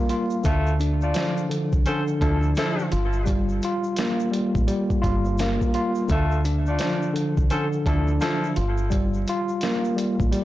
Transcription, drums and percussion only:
0.09 closed hi-hat, shaker
0.30 shaker
0.44 kick, closed hi-hat, shaker
0.67 shaker
0.80 closed hi-hat, shaker
1.01 shaker
1.14 snare, closed hi-hat, shaker
1.37 shaker
1.51 closed hi-hat, shaker
1.73 kick, shaker
1.86 closed hi-hat, shaker
2.08 shaker
2.21 kick, closed hi-hat
2.43 shaker
2.55 snare, closed hi-hat, shaker
2.79 shaker
2.92 closed hi-hat, shaker
3.13 shaker
3.26 kick, closed hi-hat, shaker
3.49 shaker
3.62 closed hi-hat, shaker
3.84 shaker
3.96 snare, closed hi-hat, shaker
4.20 shaker
4.33 closed hi-hat
4.55 kick, shaker
4.68 closed hi-hat, shaker
4.90 kick, shaker
5.03 kick, closed hi-hat, shaker
5.25 shaker
5.38 snare, closed hi-hat, shaker
5.61 kick, shaker
5.74 closed hi-hat, shaker
5.95 shaker
6.08 kick, closed hi-hat, shaker
6.31 shaker
6.45 closed hi-hat, shaker
6.66 shaker
6.79 snare, closed hi-hat, shaker
7.02 shaker
7.16 closed hi-hat, shaker
7.37 kick, shaker
7.50 closed hi-hat, shaker
7.73 shaker
7.86 kick, closed hi-hat
8.07 shaker
8.20 snare, closed hi-hat, shaker
8.44 shaker
8.56 closed hi-hat, shaker
8.77 shaker
8.91 kick, closed hi-hat, shaker
9.14 shaker
9.27 closed hi-hat, shaker
9.48 shaker
9.61 snare, closed hi-hat, shaker
9.84 shaker
9.98 closed hi-hat, shaker
10.20 kick, shaker
10.33 closed hi-hat, shaker

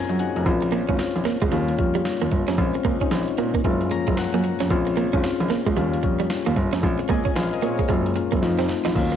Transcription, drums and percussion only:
0.09 closed hi-hat
0.19 closed hi-hat
0.36 closed hi-hat
0.46 kick, closed hi-hat
0.62 closed hi-hat
0.73 closed hi-hat
0.89 kick, closed hi-hat
0.99 snare, closed hi-hat
1.16 closed hi-hat
1.25 snare, closed hi-hat
1.42 kick, closed hi-hat
1.52 closed hi-hat
1.68 closed hi-hat
1.78 kick, closed hi-hat
1.95 closed hi-hat
2.05 snare, closed hi-hat
2.22 closed hi-hat
2.31 kick, closed hi-hat
2.48 snare, closed hi-hat
2.58 kick, closed hi-hat
2.74 closed hi-hat
2.85 kick, closed hi-hat
3.01 kick, closed hi-hat
3.11 snare, closed hi-hat
3.28 closed hi-hat
3.38 closed hi-hat
3.54 kick, closed hi-hat
3.65 kick, closed hi-hat
3.81 closed hi-hat
3.91 closed hi-hat
4.07 kick, closed hi-hat
4.17 snare, closed hi-hat
4.34 closed hi-hat
4.44 closed hi-hat
4.60 snare, closed hi-hat
4.70 kick, closed hi-hat
4.87 closed hi-hat
4.97 closed hi-hat
5.13 kick, closed hi-hat
5.23 snare, closed hi-hat
5.40 closed hi-hat
5.50 snare, closed hi-hat
5.67 kick, closed hi-hat
5.77 closed hi-hat
5.93 closed hi-hat
6.03 kick, closed hi-hat
6.20 closed hi-hat
6.30 snare, closed hi-hat
6.47 closed hi-hat
6.56 kick, closed hi-hat
6.73 snare, closed hi-hat
6.83 kick, closed hi-hat
6.99 closed hi-hat
7.10 kick, closed hi-hat
7.26 kick, closed hi-hat
7.36 snare, closed hi-hat
7.53 closed hi-hat
7.63 closed hi-hat
7.79 kick, closed hi-hat
7.89 kick, closed hi-hat
8.06 closed hi-hat
8.16 closed hi-hat
8.32 kick, closed hi-hat
8.43 snare, closed hi-hat
8.59 snare, closed hi-hat
8.69 snare, closed hi-hat
8.85 snare, closed hi-hat
8.95 kick, closed hi-hat, crash
9.12 closed hi-hat

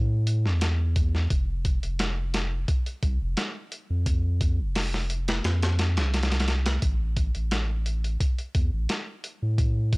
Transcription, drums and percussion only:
0.27 closed hi-hat
0.46 snare
0.61 snare, closed hi-hat
0.96 kick, closed hi-hat
1.15 snare
1.30 kick, closed hi-hat
1.65 kick, closed hi-hat
1.83 closed hi-hat
1.99 snare, closed hi-hat
2.34 snare, closed hi-hat
2.68 kick, closed hi-hat
2.86 closed hi-hat
3.03 kick, closed hi-hat
3.37 snare, closed hi-hat
3.72 closed hi-hat
4.06 kick, closed hi-hat
4.41 kick, closed hi-hat
4.75 snare, open hi-hat
4.94 snare
5.10 closed hi-hat
5.28 snare, closed hi-hat
5.44 snare, closed hi-hat
5.63 snare, closed hi-hat
5.79 snare, closed hi-hat
5.97 snare, closed hi-hat
6.14 snare, closed hi-hat
6.23 snare, closed hi-hat
6.32 snare, closed hi-hat
6.40 snare, closed hi-hat
6.48 snare, closed hi-hat
6.66 snare, closed hi-hat
6.82 kick, closed hi-hat
7.17 kick, closed hi-hat
7.35 closed hi-hat
7.51 snare, closed hi-hat
7.86 closed hi-hat
8.04 closed hi-hat
8.20 kick, closed hi-hat
8.38 closed hi-hat
8.55 kick, closed hi-hat
8.89 snare, closed hi-hat
9.24 closed hi-hat
9.58 kick, closed hi-hat
9.93 kick, closed hi-hat

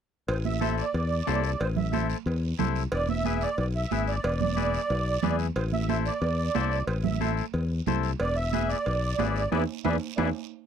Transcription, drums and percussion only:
0.28 cowbell, long guiro
0.45 high conga
0.61 high conga, short guiro
0.78 short guiro
0.94 cowbell, long guiro
1.27 high conga, low timbale, short guiro
1.44 short guiro
1.60 cowbell, long guiro
1.76 low conga
1.93 high conga, short guiro
2.10 short guiro
2.26 cowbell, long guiro
2.59 high conga, low conga, short guiro
2.75 short guiro
2.92 cowbell, long guiro
3.08 high conga
3.25 high conga, short guiro
3.41 short guiro
3.58 cowbell, long guiro
3.91 high conga, short guiro
4.07 short guiro
4.24 cowbell, long guiro
4.41 high conga, low conga
4.57 high conga, short guiro
4.74 short guiro
4.90 cowbell, long guiro
5.23 high conga, low conga, short guiro
5.39 short guiro
5.56 cowbell, long guiro
5.73 high conga
5.89 high conga, short guiro
6.06 short guiro
6.22 cowbell, long guiro
6.55 high conga, low timbale, short guiro
6.71 short guiro
6.87 cowbell, long guiro
7.04 high conga, low conga
7.21 high conga, short guiro
7.37 short guiro
7.53 cowbell, long guiro
7.86 high conga, low conga, short guiro
8.03 short guiro
8.20 cowbell, long guiro
8.53 high conga, short guiro
8.70 short guiro
8.86 cowbell, long guiro
9.19 high conga, low timbale, short guiro
9.36 short guiro
9.52 high conga, high timbale, long guiro
9.85 high conga, high timbale, long guiro
10.18 high conga, high timbale

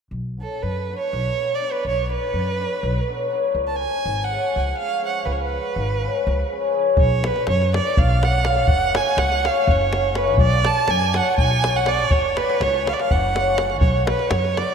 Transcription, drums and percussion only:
6.97 davul low
7.24 davul high
7.36 davul high
7.47 davul high
7.62 davul high
7.74 davul high
7.97 davul low
8.10 davul high
8.23 davul high
8.45 davul high
8.55 davul high
8.67 davul low
8.95 davul high
9.06 davul high
9.18 davul high
9.32 davul high
9.45 davul high
9.68 davul low
9.81 davul high
9.93 davul high
10.15 davul high
10.28 davul high
10.38 davul low
10.65 davul high
10.76 davul high
10.88 davul high
11.01 davul high
11.14 davul high
11.38 davul low
11.51 davul high
11.64 davul high
11.86 davul high
11.99 davul high
12.11 davul low
12.24 davul high
12.37 davul high
12.50 davul high
12.61 davul high
12.74 davul high
12.87 davul high
13.00 davul high
13.11 davul low
13.36 davul high
13.58 davul high
13.70 davul high
13.81 davul low
14.07 davul high
14.19 davul high
14.31 davul high
14.44 davul high
14.57 davul high

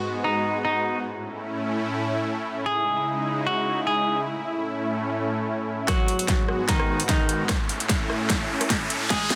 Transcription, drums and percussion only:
5.88 kick, cross-stick, snare, closed hi-hat
6.08 closed hi-hat
6.19 closed hi-hat
6.28 kick, snare, closed hi-hat
6.48 cross-stick
6.69 kick, snare, closed hi-hat
6.80 cross-stick
7.00 closed hi-hat
7.09 kick, snare, closed hi-hat
7.29 closed hi-hat
7.49 kick, cross-stick, snare, closed hi-hat
7.69 closed hi-hat
7.80 closed hi-hat
7.89 kick, snare, closed hi-hat
8.10 cross-stick
8.30 kick, snare, closed hi-hat
8.61 cross-stick, closed hi-hat
8.70 kick, snare, closed hi-hat
8.90 closed hi-hat
9.10 kick, snare, closed hi-hat
9.30 snare, closed hi-hat

